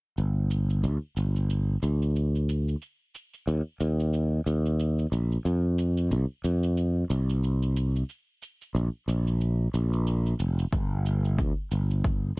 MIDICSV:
0, 0, Header, 1, 3, 480
1, 0, Start_track
1, 0, Key_signature, -2, "minor"
1, 0, Tempo, 659341
1, 129, Time_signature, 4, 2, 24, 8
1, 9022, End_track
2, 0, Start_track
2, 0, Title_t, "Fretless electric bass"
2, 0, Program_c, 0, 35
2, 131, Note_on_c, 0, 31, 77
2, 609, Note_on_c, 0, 38, 84
2, 620, Note_off_c, 0, 31, 0
2, 704, Note_off_c, 0, 38, 0
2, 850, Note_on_c, 0, 31, 84
2, 1279, Note_off_c, 0, 31, 0
2, 1330, Note_on_c, 0, 38, 75
2, 1999, Note_off_c, 0, 38, 0
2, 2530, Note_on_c, 0, 39, 89
2, 2625, Note_off_c, 0, 39, 0
2, 2770, Note_on_c, 0, 39, 81
2, 3199, Note_off_c, 0, 39, 0
2, 3250, Note_on_c, 0, 39, 82
2, 3679, Note_off_c, 0, 39, 0
2, 3727, Note_on_c, 0, 34, 73
2, 3905, Note_off_c, 0, 34, 0
2, 3969, Note_on_c, 0, 41, 85
2, 4451, Note_on_c, 0, 36, 87
2, 4462, Note_off_c, 0, 41, 0
2, 4545, Note_off_c, 0, 36, 0
2, 4691, Note_on_c, 0, 41, 80
2, 5119, Note_off_c, 0, 41, 0
2, 5170, Note_on_c, 0, 36, 79
2, 5839, Note_off_c, 0, 36, 0
2, 6368, Note_on_c, 0, 34, 89
2, 6464, Note_off_c, 0, 34, 0
2, 6608, Note_on_c, 0, 34, 83
2, 7038, Note_off_c, 0, 34, 0
2, 7090, Note_on_c, 0, 34, 85
2, 7519, Note_off_c, 0, 34, 0
2, 7570, Note_on_c, 0, 29, 72
2, 7746, Note_off_c, 0, 29, 0
2, 7809, Note_on_c, 0, 31, 84
2, 8290, Note_on_c, 0, 38, 90
2, 8301, Note_off_c, 0, 31, 0
2, 8385, Note_off_c, 0, 38, 0
2, 8529, Note_on_c, 0, 31, 82
2, 8958, Note_off_c, 0, 31, 0
2, 9022, End_track
3, 0, Start_track
3, 0, Title_t, "Drums"
3, 130, Note_on_c, 9, 82, 39
3, 203, Note_off_c, 9, 82, 0
3, 370, Note_on_c, 9, 82, 64
3, 442, Note_off_c, 9, 82, 0
3, 509, Note_on_c, 9, 82, 30
3, 581, Note_off_c, 9, 82, 0
3, 609, Note_on_c, 9, 82, 39
3, 682, Note_off_c, 9, 82, 0
3, 851, Note_on_c, 9, 82, 66
3, 923, Note_off_c, 9, 82, 0
3, 990, Note_on_c, 9, 82, 30
3, 1063, Note_off_c, 9, 82, 0
3, 1092, Note_on_c, 9, 82, 40
3, 1165, Note_off_c, 9, 82, 0
3, 1330, Note_on_c, 9, 82, 66
3, 1403, Note_off_c, 9, 82, 0
3, 1472, Note_on_c, 9, 82, 29
3, 1545, Note_off_c, 9, 82, 0
3, 1573, Note_on_c, 9, 82, 37
3, 1646, Note_off_c, 9, 82, 0
3, 1714, Note_on_c, 9, 82, 26
3, 1787, Note_off_c, 9, 82, 0
3, 1815, Note_on_c, 9, 82, 67
3, 1887, Note_off_c, 9, 82, 0
3, 1953, Note_on_c, 9, 82, 27
3, 2026, Note_off_c, 9, 82, 0
3, 2052, Note_on_c, 9, 82, 41
3, 2125, Note_off_c, 9, 82, 0
3, 2292, Note_on_c, 9, 82, 62
3, 2365, Note_off_c, 9, 82, 0
3, 2430, Note_on_c, 9, 82, 32
3, 2503, Note_off_c, 9, 82, 0
3, 2532, Note_on_c, 9, 82, 37
3, 2605, Note_off_c, 9, 82, 0
3, 2770, Note_on_c, 9, 82, 68
3, 2843, Note_off_c, 9, 82, 0
3, 2910, Note_on_c, 9, 82, 32
3, 2983, Note_off_c, 9, 82, 0
3, 3010, Note_on_c, 9, 82, 42
3, 3083, Note_off_c, 9, 82, 0
3, 3252, Note_on_c, 9, 82, 70
3, 3325, Note_off_c, 9, 82, 0
3, 3391, Note_on_c, 9, 82, 29
3, 3464, Note_off_c, 9, 82, 0
3, 3492, Note_on_c, 9, 82, 38
3, 3565, Note_off_c, 9, 82, 0
3, 3631, Note_on_c, 9, 82, 28
3, 3704, Note_off_c, 9, 82, 0
3, 3732, Note_on_c, 9, 82, 79
3, 3805, Note_off_c, 9, 82, 0
3, 3871, Note_on_c, 9, 82, 29
3, 3944, Note_off_c, 9, 82, 0
3, 3972, Note_on_c, 9, 82, 42
3, 4045, Note_off_c, 9, 82, 0
3, 4211, Note_on_c, 9, 82, 68
3, 4284, Note_off_c, 9, 82, 0
3, 4350, Note_on_c, 9, 82, 34
3, 4422, Note_off_c, 9, 82, 0
3, 4449, Note_on_c, 9, 82, 41
3, 4522, Note_off_c, 9, 82, 0
3, 4691, Note_on_c, 9, 82, 75
3, 4763, Note_off_c, 9, 82, 0
3, 4829, Note_on_c, 9, 82, 32
3, 4902, Note_off_c, 9, 82, 0
3, 4932, Note_on_c, 9, 82, 43
3, 5004, Note_off_c, 9, 82, 0
3, 5171, Note_on_c, 9, 82, 71
3, 5244, Note_off_c, 9, 82, 0
3, 5312, Note_on_c, 9, 82, 31
3, 5385, Note_off_c, 9, 82, 0
3, 5413, Note_on_c, 9, 82, 40
3, 5486, Note_off_c, 9, 82, 0
3, 5552, Note_on_c, 9, 82, 30
3, 5625, Note_off_c, 9, 82, 0
3, 5654, Note_on_c, 9, 82, 73
3, 5727, Note_off_c, 9, 82, 0
3, 5794, Note_on_c, 9, 82, 30
3, 5867, Note_off_c, 9, 82, 0
3, 5892, Note_on_c, 9, 82, 38
3, 5965, Note_off_c, 9, 82, 0
3, 6133, Note_on_c, 9, 82, 68
3, 6205, Note_off_c, 9, 82, 0
3, 6273, Note_on_c, 9, 82, 32
3, 6345, Note_off_c, 9, 82, 0
3, 6374, Note_on_c, 9, 82, 41
3, 6447, Note_off_c, 9, 82, 0
3, 6614, Note_on_c, 9, 82, 72
3, 6687, Note_off_c, 9, 82, 0
3, 6751, Note_on_c, 9, 82, 31
3, 6824, Note_off_c, 9, 82, 0
3, 6850, Note_on_c, 9, 82, 41
3, 6923, Note_off_c, 9, 82, 0
3, 7092, Note_on_c, 9, 82, 69
3, 7165, Note_off_c, 9, 82, 0
3, 7229, Note_on_c, 9, 82, 29
3, 7302, Note_off_c, 9, 82, 0
3, 7331, Note_on_c, 9, 82, 41
3, 7404, Note_off_c, 9, 82, 0
3, 7471, Note_on_c, 9, 82, 30
3, 7544, Note_off_c, 9, 82, 0
3, 7569, Note_on_c, 9, 82, 78
3, 7642, Note_off_c, 9, 82, 0
3, 7709, Note_on_c, 9, 82, 31
3, 7782, Note_off_c, 9, 82, 0
3, 7808, Note_on_c, 9, 36, 94
3, 7811, Note_on_c, 9, 82, 39
3, 7881, Note_off_c, 9, 36, 0
3, 7884, Note_off_c, 9, 82, 0
3, 8050, Note_on_c, 9, 82, 61
3, 8123, Note_off_c, 9, 82, 0
3, 8188, Note_on_c, 9, 82, 32
3, 8261, Note_off_c, 9, 82, 0
3, 8289, Note_on_c, 9, 36, 85
3, 8290, Note_on_c, 9, 82, 39
3, 8362, Note_off_c, 9, 36, 0
3, 8363, Note_off_c, 9, 82, 0
3, 8529, Note_on_c, 9, 82, 75
3, 8602, Note_off_c, 9, 82, 0
3, 8668, Note_on_c, 9, 82, 32
3, 8741, Note_off_c, 9, 82, 0
3, 8768, Note_on_c, 9, 36, 94
3, 8770, Note_on_c, 9, 82, 40
3, 8841, Note_off_c, 9, 36, 0
3, 8843, Note_off_c, 9, 82, 0
3, 9022, End_track
0, 0, End_of_file